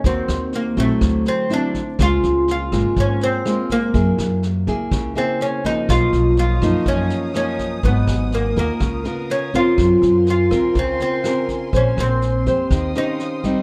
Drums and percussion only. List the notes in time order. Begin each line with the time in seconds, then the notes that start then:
0.04 kick, snare
0.28 cross-stick, snare
0.53 snare
0.77 kick, snare
1.01 kick, cross-stick, snare
1.25 snare
1.50 snare
1.75 kick, snare
1.99 kick, cross-stick, snare
2.23 snare
2.48 snare
2.72 kick, cross-stick, snare
2.96 kick, snare
3.21 snare
3.45 cross-stick, snare
3.70 kick, snare
3.94 kick, snare
4.18 cross-stick, snare
4.43 snare
4.67 kick, snare
4.91 kick, cross-stick, snare
5.16 snare
5.41 snare
5.65 kick, snare
5.89 kick, cross-stick, snare
6.13 snare
6.37 snare
6.62 kick, cross-stick, snare
6.86 kick, snare
7.10 snare
7.34 cross-stick, snare
7.59 kick, snare
7.83 kick, snare
8.07 cross-stick, snare
8.32 snare
8.56 kick, snare
8.80 kick, cross-stick, snare
9.05 snare
9.30 snare
9.54 kick, snare
9.78 kick, cross-stick, snare
10.02 snare
10.26 snare
10.51 kick, cross-stick, snare
10.75 kick, snare
11.00 snare
11.24 cross-stick, snare
11.48 kick, snare
11.73 kick, snare
11.98 cross-stick, snare
12.22 snare
12.46 kick, snare
12.71 kick, cross-stick, snare
12.95 snare
13.19 snare
13.44 kick, snare